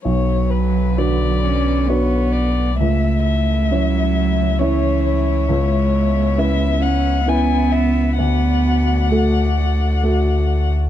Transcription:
<<
  \new Staff \with { instrumentName = "Violin" } { \time 3/4 \key b \dorian \tempo 4 = 66 cis''8 b'8 d''4 cis''8 d''8 | e''8 e''4. cis''8 cis''8~ | cis''4 e''8 fis''8 gis''8 e''8 | fis''2. | }
  \new Staff \with { instrumentName = "Grand piano" } { \time 3/4 \key b \dorian b,,4 <d fis' b'>4 <d' fis' b'>4 | cis,4 <cis' e' cis''>4 <cis' e' cis''>4 | cis,4 <cis' e' b'>4 <cis' e' b'>4 | d,4 <a fis' a'>4 <a fis' a'>4 | }
  \new Staff \with { instrumentName = "String section" } { \time 3/4 \key b \dorian << { <d b'>2. | <e' e''>2.~ | <e' e''>2. | <fis' d''>2. | } \\ { b2. | a2. | b2. | a2. | } >> }
  \new Staff \with { instrumentName = "Cello" } { \time 3/4 \key b \dorian fis4. cis'8 b4 | a4 fis4 e4 | gis4. cis'8 b4 | b4 a4 r4 | }
  \new Staff \with { instrumentName = "Sub bass" } { \clef bass \time 3/4 \key b \dorian b,,2. | cis,2.~ | cis,2. | d,2. | }
>>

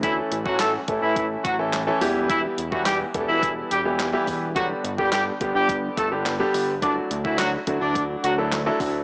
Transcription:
<<
  \new Staff \with { instrumentName = "Horn section" } { \time 4/4 \key d \major \tempo 4 = 106 <e e'>16 r8 <fis fis'>16 <a a'>16 r8 <e e'>8 r16 <fis fis'>16 r4 r16 | <e e'>16 r8 <fis fis'>16 <g g'>16 r8 <e e'>8 r16 <g g'>16 r4 r16 | <fis fis'>16 r8 <g g'>16 <g g'>16 r8 <g g'>8 r16 <a a'>16 r4 r16 | <d' d''>16 r8 <e e'>16 <fis fis'>16 r8 <d' d''>8 r16 <fis fis'>16 r4 r16 | }
  \new Staff \with { instrumentName = "Grand piano" } { \time 4/4 \key d \major <e a cis' e' a'>8 r16 <e a cis' e' fis'>8 r16 <e a cis' e' a'>4 r16 <e a cis' e' a'>8 <e a cis' e' a'>16 <e g b e' g'>8~ | <e g b e' g'>8 r16 <e g b e' g'>8 r16 <e g b e' a'>4 r16 <e g b e' g'>8 <e g b e' g'>8 r16 | <d g b d' g'>8 r16 <d g b d' g'>8 r16 <d g b d' g'>4 r16 <d g b d' g'>8 <d g b d' g'>8 r16 | <fis a d' e' fis'>8 r16 <fis a d' e' fis'>8 r16 <fis a d' e' fis'>4 r16 <fis a d' e' a'>8 <fis a d' e' a'>8 r16 | }
  \new Staff \with { instrumentName = "Analog synth bass" } { \clef bass \time 4/4 \key d \major d,8 a,,4 a,,16 a,,8. a,,4 e,,8~ | e,,8 e,,4 e,,16 e,,8. e,,4 e,,8~ | e,,8 g,,4 g,,16 g,,8. g,,4 g,,8~ | g,,8 d,4 d,16 d,8. d,4 d,8 | }
  \new DrumStaff \with { instrumentName = "Drums" } \drummode { \time 4/4 <hh bd>8 hh16 bd16 <hc hh sn>8 <hh bd>8 <hh bd>8 <hh bd>8 <hc hh sn>8 hho8 | <hh bd>8 hh16 bd16 <hc hh sn>8 <hh bd>8 <hh bd>8 hh8 <hc hh sn>8 <hho bd>8 | <hh bd>8 hh16 bd16 <hc hh sn>8 <hh bd>8 <hh bd>8 <hh bd>8 <hc hh sn>8 hho8 | <hh bd>8 hh16 bd16 <hc hh sn>8 <hh bd>8 <hh bd>8 hh8 <hc hh sn>8 <hho bd>8 | }
>>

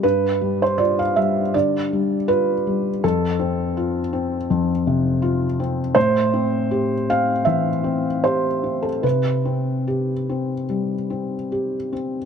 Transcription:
\new Staff \with { instrumentName = "Felt piano" } { \time 4/4 \key a \minor \tempo 4 = 80 << { b'8. c''16 d''16 f''16 e''8 d''4 b'4 | a'2.~ a'8 r8 | c''4. f''8 e''4 c''8. a'16 | b'2.~ b'8 r8 | } \\ { g,8 g8 f'8 g8 d8 g8 f'8 g8 | f,8 c'8 f'8 c'8 f,8 c8 f'8 c'8 | a,8 c'8 g'8 c'8 e8 c'8 g'8 c'8 | c8 c'8 g'8 c'8 g8 c'8 g'8 c'8 | } >> }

